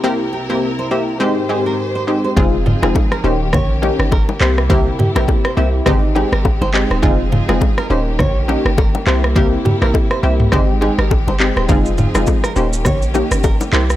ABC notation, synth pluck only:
X:1
M:4/4
L:1/16
Q:"Swing 16ths" 1/4=103
K:Ab
V:1 name="Synth pluck"
[B,C=EG]2 z [B,CEG] z2 [B,CEG]2 [A,C_EG]2 [A,CEG]2 z2 [A,CEG]2 | [A,CEF]2 z [A,CEF] z2 [B,DEG]2 z2 [B,DEG]2 z2 [B,C=EG]2 | [B,C=EG]2 z [B,CEG] z2 [B,CEG]2 [A,C_EG]2 [A,CEG]2 z2 [A,CEG]2 | [A,CEF]2 z [A,CEF] z2 [B,DEG]2 z2 [B,DEG]2 z2 [B,C=EG]2 |
[B,C=EG]2 z [B,CEG] z2 [B,CEG]2 [A,C_EG]2 [A,CEG]2 z2 [A,CEG]2 | [A,CEF]2 z [A,CEF] z2 [B,DEG]2 z2 [B,DEG]2 z2 [B,C=EG]2 |]